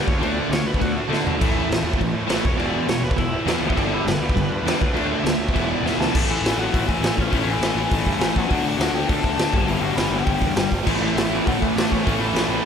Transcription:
0.07 D2 D3 A3 D4 C#5, kick
0.19 D2 D3 A3 D4 D5, crash
0.50 D2 D3 A3 C#5, snare, crash
0.54 A3 D4
0.64 D2 B4
0.74 kick
0.79 D2 D3 A3 F#4, kick, crash
0.96 D3 A3 D4
1.09 D3 A3 D4, snare
1.24 B2, floor tom
1.39 A1 A2 E3 A3, kick, crash
1.45 A3
1.69 A1 A2 E3, snare, crash
1.83 E2 E3 A3
1.89 A2
1.93 kick
1.99 A1 A2 E3, kick, crash
2.14 A2
2.27 A1 A2 E3 A3 B4, snare, crash
2.32 A3
2.42 E1 E2 B2 C#5, kick
2.47 E3
2.57 E1 E2 B2 E3 D5, crash
2.86 E1 E2 B2 C#5, snare, crash
2.90 E3
3.02 E1 B4
3.11 kick
3.17 E1 E2 B2 E4, kick, crash
3.31 E2 B2 E3
3.46 E2 B2 E3, snare, crash
3.61 D2 B4 E5
3.70 kick
3.75 G1 G2 D3 G3 A4 D5, kick, crash
3.92 E4 A4
4.05 G1 G2 D3 B4, snare, crash
4.19 D2 G2 D3 G3
4.29 kick
4.35 G1 G2 D3, kick, crash
4.49 G2
4.63 E2 G2 D3
4.67 G3, snare, crash
4.79 D2 D3 A3 D4, kick
4.93 D2 D3 A3 D4, crash
5.13 E5
5.23 D2 D3 A3 D4, snare, crash
5.39 D2
5.49 kick
5.53 E1 E2 B2 E3, kick, crash
5.71 D5
5.83 E2 B2 E3 E5, snare
5.98 D2 B2 E3 A5, snare
6.02 E2
6.11 A1 A2 E3 A3, kick, crash
6.16 E3 A3
6.26 A1
6.30 E3 E4
6.42 A1 A2 E3 A3, open hi-hat
6.46 snare
6.56 A1 F#3 F#4
6.72 A1 A2 E3 A3, kick, open hi-hat
6.88 A1 E3 E4, kick
7.00 A1 A2 E3 A3, snare, open hi-hat
7.18 A1 C#4 C#5, kick
7.30 A1 A2 E3 A3 C#4 C#5, kick, open hi-hat
7.45 A1
7.51 E3 E4
7.60 A1 A2 E3 A3, snare, open hi-hat
7.75 A1
7.91 A1 A2 E3 A3, kick, open hi-hat
8.06 G2, kick
8.19 A1 A2 E3 A3, snare, open hi-hat
8.36 A1 F#3 F#4, kick
8.48 D2 D3 A3 D4, kick, open hi-hat
8.63 D2
8.68 F#3 F#4
8.79 D2 D3 A3 D4, snare, open hi-hat
8.93 D2 G3 G4
9.08 D2 D3 A3 D4 A4, kick, open hi-hat
9.24 D2 A3 A4, kick
9.36 D2 D3 A3 D4, snare, open hi-hat
9.51 G1 G2 D3 G3, kick
9.65 G1 G2 D3 G3, open hi-hat
9.69 E3 E4
9.80 G1 F#3 F#4
9.96 G1 G2 D3 E3 G3 E4, snare, open hi-hat
10.11 G1
10.20 F#4
10.25 G1 G2 D3 G3 G4, kick, open hi-hat
10.41 E2, kick
10.56 G1 G2 D3 G3, snare, open hi-hat
10.71 G1, kick
10.86 A1 A2 E3 A3, kick, crash
11.01 A1 E3 E4
11.15 A1 A2 E3 A3, snare, open hi-hat
11.29 A1 A2 E3 A3
11.47 A1 A2 E3 F#3 A3 F#4, kick, open hi-hat
11.61 A1 E3 E4, kick
11.75 A1 A2 E3 A3 D4 D5, snare, open hi-hat
11.91 A1 C#4 C#5, kick
12.04 A1 A2 E3 A3 C#4 C#5, kick, open hi-hat
12.20 A1 E3 E4
12.34 A1 A3, snare, open hi-hat
12.38 A2 E3
12.47 A1 A2 E3 A3

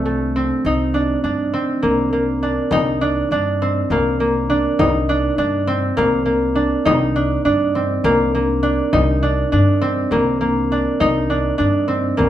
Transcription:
Already playing: C2 C4 D4 F4
0.05 A3
0.36 C4
0.65 C2 D#4
0.94 D4
1.24 G2 D4
1.53 C4
1.82 C2 A#3
2.13 A#3
2.43 D4
2.71 C2 D#4, frame drum
3.01 D4, frame drum
3.31 G2 D4
3.61 C4, frame drum
3.90 C2 A#3, frame drum
4.20 A#3
4.50 D4
4.79 C2 D#4, frame drum
5.09 D4, frame drum
5.38 G2 D4
5.67 C4, frame drum
5.97 C2 A#3, frame drum
6.25 A#3
6.55 D4
6.85 C2 D#4, frame drum
7.16 D4, frame drum
7.45 G2 D4
7.75 C4, frame drum
8.04 C2 A#3, frame drum
8.35 A#3
8.63 D4
8.93 C2 D#4, frame drum
9.23 D4
9.52 G2 D4, frame drum
9.81 C4
10.11 C2 A#3, frame drum
10.41 A#3, frame drum
10.72 D4
11.00 C2 D#4, frame drum
11.29 D4, frame drum
11.58 G2 D4
11.88 C4, frame drum
12.17 C2 A#3, frame drum

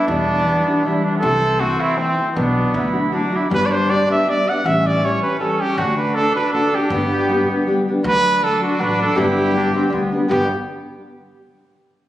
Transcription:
0.07 E2 B2 E3 G3 B3 D4 E4
0.45 E3 G3 D4 E4
0.66 E3 G3 D4 E4
0.84 E3 G3 D4 E4
1.04 D4
1.16 B3 A4
1.22 C2 C3 E3 A3 C4 E4
1.60 E3 A3 C4 E4 F#4
1.80 E4
1.96 E3 A3 C4 E4
2.18 A3 C4 E4
2.30 B3 C4
2.35 B1 B2 F#3 B3 D4 F#4
2.74 D2 F#3 A3 D4 E4 F#4
2.93 A3 D4 F#4
3.11 F#3 A3 D4 F#4
3.33 A3 D4 E4 F#4
3.50 G1 G2 D3 G3 B3 D4 G4
3.55 B4
3.66 D5
3.72 C5
3.88 G3 B3 D4 G4 D5
4.07 G3 B3 D4 G4 E5
4.26 G3 B3 D4 G4 D5
4.46 G3 B3 D4 G4 F#5
4.63 A1 A2 E3 G3 C#4 G4 E5
4.87 D5
5.02 E3 G3 C#4 G4 C#5
5.22 G3 C#4 G4 B4
5.39 E3 G3 C#4 G4 A4
5.61 G3 C#4 G4
5.78 D2 D3 A3 D4 F#4
5.97 B4
6.15 D3 A3 D4 F#4 A4
6.36 A3 D4 F#4 B4
6.53 D3 A3 D4 F#4 A4
6.74 A3 D4 F#4 G4
6.90 G1 G2 D3 G3 B3 D4 G4
7.30 G3 B3 D4 G4
7.50 G3 B3 D4 G4
7.67 G3 B3 D4 G4
7.88 G3 B3 D4 G4
8.03 D2 D3 F#3 A3 D4 F#4 B4
8.42 F#3 A3 D4 F#4 A4
8.62 A3 D4 F#4
8.78 A1 F#3 A3 D4 F#4 B4
8.99 A3 D4 F#4 A4
9.15 G1 G2 D3 G3 B3 D4 E4 G4
9.20 G4
9.53 G3 B3 D4 G4
9.73 G3 B3 C4 D4 G4
9.89 D2 G3 B3 D4 G4
9.94 B3
10.12 G3 B3 D4 G4
10.28 G1 G2 D3 G3 B3 D4 G4
10.32 B3

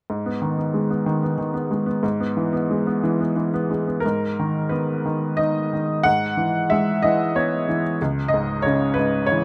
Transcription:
0.10 G#2
0.26 B3
0.42 D#3
0.58 B3
0.74 G#3
0.90 B3
1.06 D#3
1.23 B3
1.38 D#3
1.54 B3
1.71 G#3
1.86 B3
2.03 G#2
2.20 B3
2.37 E3
2.53 B3
2.70 G#3
2.87 B3
3.03 E3
3.20 B3
3.36 E3
3.54 B3
3.71 G#3
3.88 B3
4.00 A#4
4.06 G#2
4.39 D#3
4.69 B3 B4
5.05 D#3
5.37 D#4 D#5
5.73 D#3
6.03 G#2 F#5
6.37 E3
6.70 G#3 E5
7.02 E3 D#5
7.36 B3 C#5
7.69 E3
8.02 C#2
8.28 D#5
8.34 G#2
8.62 C#3 C#5
8.94 B4
8.98 G#2
9.26 C#5
9.32 E3

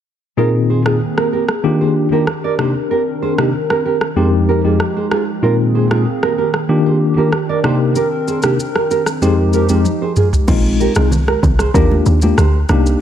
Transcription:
0.37 A#2 D#3 A#3 C4 D#4 F4 G#4 A#4
0.70 G#4 C5
0.85 A#2 C4 D#4 F4 G#4, cross-stick
1.18 G4 A#4, cross-stick
1.33 G4 A#4
1.49 cross-stick
1.64 D#3 A#3 D4 F4 G4
1.81 G#4 C5
2.12 D#3 A#3 D4 F4 G4 A#4
2.27 cross-stick
2.44 A#4 D5
2.58 C3 D#3 A#3 C4 D4 D#4 G4 A#4 C5, cross-stick
2.91 G4 A#4
3.22 G#4 C5
3.38 C3 A#3 D4 D#4 G4, cross-stick
3.70 G4 A#4, cross-stick
3.86 G4 A#4
4.01 cross-stick
4.16 F2 F3 G#3 C4 D#4 G4 G#4 C5
4.49 G4 A#4
4.64 F2 G#3 C4 D#4 F4 G4 G#4
4.80 cross-stick
4.97 G#4 C5
5.11 F4 G#4, cross-stick
5.42 A#2 D#3 G#3 A#3 C4 D#4 F4 G#4 A#4
5.75 G#4 C5
5.90 A#2 G#3 C4 D#4 F4 G#4, cross-stick
6.23 G4 A#4, cross-stick
6.38 G4 A#4
6.54 cross-stick
6.69 D#3 A#3 D4 F4 G4
6.86 G#4 C5
7.17 D#3 A#3 D4 F4 G4 A#4
7.33 cross-stick
7.49 A#4 D5
7.64 C3 A#3 C4 D4 D#4 G4 A#4 C5, cross-stick
7.96 G4 A#4, shaker
8.28 G#4 C5, shaker
8.43 C3 A#3 D4 D#4 G4, cross-stick, shaker
8.60 shaker
8.76 G4 A#4, cross-stick
8.91 G4 A#4, shaker
9.06 cross-stick, shaker
9.22 F2 F3 G#3 C4 D#4 G4 G#4 C5, shaker
9.53 G4 A#4, shaker
9.69 F2 G#3 C4 D#4 F4 G4 G#4, shaker
9.85 high tom, shaker
10.02 G#4 C5
10.16 F4 G#4, mid tom, shaker
10.33 floor tom, shaker
10.48 A#1 G#3 C4 D#4 F4, kick, crash, low conga, shaker
10.80 G4 A#4, shaker
10.95 C2 G#3 C4 D#4 F4 G#4, cross-stick, high conga, shaker
11.11 low conga, shaker
11.27 G4 A#4, cross-stick, high conga
11.43 C2, kick, low conga, shaker
11.59 G#4 C5, cross-stick, shaker
11.74 D#2 A#3 D4 F4 G4 A#4, kick, shaker
11.91 high conga
12.06 D#2, shaker
12.22 A#3 D4 F4 G4, high conga, shaker
12.38 D2 G4 C5, cross-stick, shaker
12.69 C2 A#3 D4 D#4 G4, cross-stick, high conga, shaker
12.86 shaker

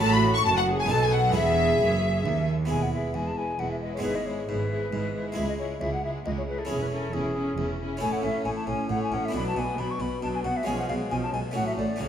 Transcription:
Already playing: C#4
0.00 A1 A2 F#4 A4 A5
0.12 B5
0.34 C#6
0.45 F#1 F#2 F#4 A5
0.56 F#5
0.68 G#4
0.78 G#5
0.86 B3 D#4 A4
0.90 B1 B2 A4 A5
1.00 G#5
1.12 F#5
1.32 E2 B3 E4 G#4
1.36 E1 E5
1.81 F#1 F#2
2.26 D#2
2.65 B3 E4 G#4
2.70 E1 E2 G#3 E4 B4 G#5
2.82 F#5
2.93 G#3 E4 B4 E5
3.14 E1 E2 G#3 E4 B4 G#5
3.27 A5
3.36 G#3 E4 B4 G#5
3.59 E1 E2 G#3 E4 B4 F#5
3.71 E5
3.81 G#3 E4 B4 D#5
3.93 C#5
3.97 G#3 B3 E4
4.02 G#1 G#2 G#3 E4 G#4 B4
4.15 D#5
4.26 G#3 E4 G#4 C#5
4.48 G#1 G#2 G#3 E4 G#4 B4
4.70 G#3 E4 G#4
4.92 G#1 G#2 G#3 E4 G#4
5.15 G#3 E4 G#4
5.32 G#3 E4 G#4 E5
5.36 C#2 G#3 E4 G#4
5.49 D#5
5.58 G#3 E4 G#4 C#5
5.80 C#2 G#3 E4 G#4 E5
5.93 F#5
6.02 G#3 E4 G#4 E5
6.25 C#2 G#3 E4 G#4 D#5
6.37 C#5
6.48 G#3 E4 G#4 B4
6.58 A4
6.65 C#4 E4 G#4
6.70 E1 E2 C#4 E4 G#4
6.81 B4
6.92 C#4 E4 G#4 A4
7.13 E1 E2 C#4 E4 G#4
7.36 C#4 E4 G#4
7.57 E1 E2 C#4 E4 G#4
7.80 C#4 E4 G#4
7.97 C#4 E4 A4 G#5
8.01 A1 A2 A3 E4 C#5
8.12 F#5
8.23 A1 A2 C#4 A4 E5
8.44 A1 A2 A3 E4 C#5 G#5
8.56 A5
8.67 A1 A2 C#4 A4 G#5
8.89 A1 A2 A3 E4 C#5 F#5
9.03 G#5
9.12 A1 A2 C#4 A4 F#5
9.25 B3 E5
9.30 B2 F#3 D4 F#4 B4
9.34 B1 D4 B5
9.47 A5
9.55 B1 B2 B3 F#4 G#5
9.78 B1 B2 F#3 D4 B4 B5
9.90 C#6
10.00 B1 B2 B3 F#4 B5
10.22 B1 B2 F#3 D4 B4 A5
10.35 G#5
10.43 B1 B2 B3 F#4 F#5
10.56 E5
10.63 B1 B2 F3 G#3 C#4 G#4 G#5
10.68 B2 F4
10.78 F#5
10.88 B1 B2 G#3 B3 G#4 F5
11.10 B1 B2 F3 C#4 F4 G#5
11.22 A5
11.33 B1 B2 G#3 B3 G#4 G#5
11.51 A3 C#4 F#4 F#5
11.55 A1 A2 F#3 A4
11.66 E5
11.77 A1 A2 A3 F#4 D5
11.96 A3 C#4 F#4
12.00 C#2 C#3 F#3 C#4 A4 C#5

